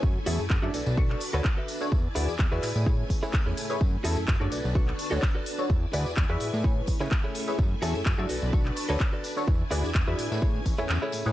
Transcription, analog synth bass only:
X:1
M:4/4
L:1/16
Q:"Swing 16ths" 1/4=127
K:Bdor
V:1 name="Analog synth bass" clef=bass
F,, z E,, F,, F,, F,, B,,, B,,,2 z2 D,, z4 | E,, z D,, E,, E,, E,, A,, A,,2 z4 E,, z2 | F,, z E,, F,, F,, F,, B,,, B,,,2 z2 D,, z4 | E,, z D,, E,, E,, E,, A,, A,,2 z2 C, z4 |
F,, z E,, F,, F,, F,, B,,, B,,,2 z2 D,, z4 | E,, z D,, E,, E,, E,, A,, A,,2 z A,,, E,, E,, z A,, A,, |]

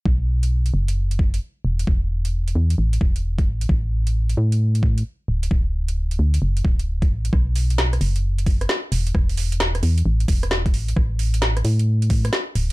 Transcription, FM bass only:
X:1
M:4/4
L:1/8
Q:"Swing 16ths" 1/4=132
K:Bm
V:1 name="FM bass" clef=bass
B,,,3 F,,,3 z E,,, | E,,,3 E,, A,,, E,,,2 A,,, | A,,,3 A,,3 z D,,, | D,,,3 D,, F,,, D,,,2 A,,, |
B,,,3 F,,,3 z E,,, | E,,,3 E,, A,,, E,,,2 A,,, | A,,,3 A,,3 z D,,, |]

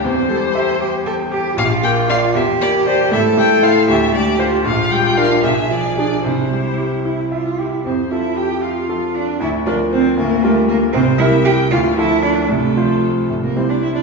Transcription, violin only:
X:1
M:6/8
L:1/16
Q:3/8=77
K:F
V:1 name="Violin"
c8- c2 z2 | f2 g2 f2 e2 d2 c2 | e2 g2 f2 e2 d2 c2 | f2 g2 f2 e2 d2 d2 |
c6 z6 | c2 e2 g2 f4 d2 | e2 d2 c2 B2 A2 B2 | c2 e2 g2 f2 e2 d2 |
A6 z B c d e d |]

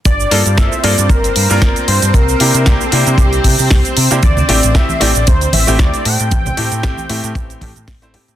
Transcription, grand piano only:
X:1
M:4/4
L:1/16
Q:"Swing 16ths" 1/4=115
K:Gdor
V:1 name="Grand piano"
z2 [B,DFA] z [B,DFA] z [B,DFA] z4 [B,DFB]4- [B,DFB] | z2 [B,DEG]2 [B,DEG] z [B,DEG]8- [B,DEG] [B,DEG] | z2 [A,CEG] z [A,CEG] z [A,CEG] z4 [A,CEG]3 z2 | z2 [A,CEG]2 [A,CEG] z [A,CEG]4 [A,CEG] z2 [A,CEc] [A,CEG]2 |]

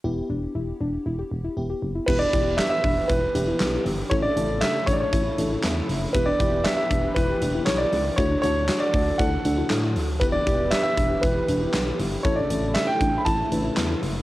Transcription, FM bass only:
X:1
M:4/4
L:1/16
Q:1/4=118
K:Edor
V:1 name="FM bass" clef=bass
E,,,2 E,,,2 E,,,2 E,,,2 E,,,2 E,,,2 E,,,2 F,,,2 | E,,,2 E,,,3 z E,,,2 E,,,2 E,,,2 B,,,2 G,,,2 | A,,,2 A,,,3 z A,,,2 A,,,2 A,,,2 E,,2 F,,,2 | E,,,2 E,,,3 z E,,,2 E,,,2 E,,,2 B,,,2 C,,2 |
D,,2 D,,3 z D,,2 D,,2 D,,2 A,,2 D,,2 | E,,,2 E,,,3 z E,,,2 E,,,2 E,,,2 B,,,2 G,,,2 | A,,,2 A,,,3 z A,,,2 A,,,2 A,,,2 E,,2 F,,,2 |]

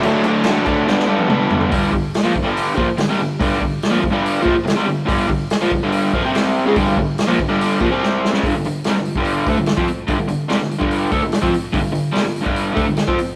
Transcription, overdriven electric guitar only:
X:1
M:4/4
L:1/16
Q:1/4=144
K:G
V:1 name="Overdriven electric guitar" clef=bass
[D,F,A,D]2 [F,A,D]2 [D,F,A,D]2 [F,A,D]2 [G,,D,G,B,D]2 [G,B,D]2 [D,G,B,D]4 | [K:C] [G,,D,G,]2 [G,,D,]2 z [_B,,F,] [G,,D,] [G,,D,G,]3 [B,,F,] z [G,,D,] [C,G,] [G,,D,]2 | [G,,D,G,]2 [G,,D,]2 z [_B,,F,] [G,,D,] [G,,D,G,]3 [B,,F,] z [G,,D,] [C,G,] [G,,D,]2 | [G,,D,G,]2 [G,,D,]2 z [_B,,F,] [G,,D,] [G,,D,G,]3 [B,,F,] [C,G,C]4 [^C,_A,] |
[G,,D,G,]2 [G,,D,]2 z [_B,,F,] [G,,D,] [G,,D,G,]3 [B,,F,] [C,G,C]4 [^C,^G,] | [G,,D,] [G,,D,] [G,,D,]2 [C,G,] [G,,D,]2 [G,,D,G,]3 [D,A,] [G,,D,]2 [F,C] z2 | [G,,D,] [G,,D,] [G,,D,]2 [C,G,] [G,,D,]2 [G,,D,G,]3 [D,A,] [G,,D,]2 [F,C] z2 | [G,,D,] [G,,D,] [G,,D,]2 [C,G,] [G,,D,]2 [G,,D,G,]3 [D,A,] [G,,D,]2 [F,C] z2 |]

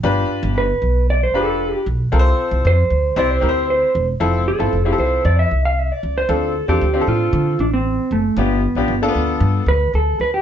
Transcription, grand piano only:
X:1
M:4/4
L:1/16
Q:1/4=115
K:F
V:1 name="Grand piano"
[DFG=B]4 z6 [DFGB]3 z3 | [CFABc]4 z4 [CEGc]2 [CEGBc]3 z3 | [CEFA]2 z [CEFA] z [CEFGA]4 z6 z | [CDFA]2 z [CDFA] z [CDFGA]4 z6 z |
[=B,DFG]2 z [B,DFG] z [_B,=B,DFA]4 z6 z |]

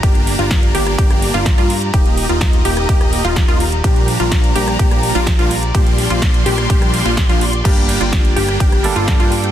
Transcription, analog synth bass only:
X:1
M:4/4
L:1/16
Q:1/4=126
K:Bb
V:1 name="Analog synth bass" clef=bass
G,,,3 G,,,3 G,,,2 G,,,3 G,,,2 G,,3 | E,,,3 E,,,3 E,,,2 E,,,3 E,,,2 E,,,3 | B,,,3 B,,,3 B,,,2 B,,,3 B,,,2 B,,,3 | B,,,3 B,,,3 B,,,2 B,,,3 B,,,2 B,,,3 |
G,,,3 G,,,3 G,,,2 G,,,3 G,,,2 G,,3 |]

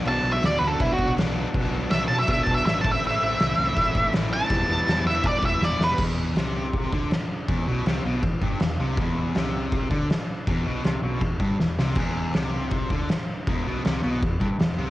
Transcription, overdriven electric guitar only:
X:1
M:4/4
L:1/8
Q:1/4=161
K:Em
V:1 name="Overdriven electric guitar" clef=bass
[B,,F,B,DF]2 [B,,F,B,DF] [B,DF]3 [F,B,DF] [B,DF] | [B,,F,B,DF]2 [B,,F,B,DF] [B,DF]3 [F,B,DF] [A,,E,A,CE] | [A,,E,A,CE]2 [A,,E,A,CE] [A,CE]3 [E,A,CE] [A,CE] | [E,G,B,E]2 [E,G,B,E] [G,B,E]3 [E,G,B,E] [G,B,E] |
E,,2 C,3 D, z2 | E,, B,, C, B,, E,, G,, E,, C, | E,,2 C,3 D, z2 | E,, B,, C, B,, E,, G,, E,, C, |
E,,2 C,3 D, z2 | E,, B,, C, B,, E,, G,, E,, C, |]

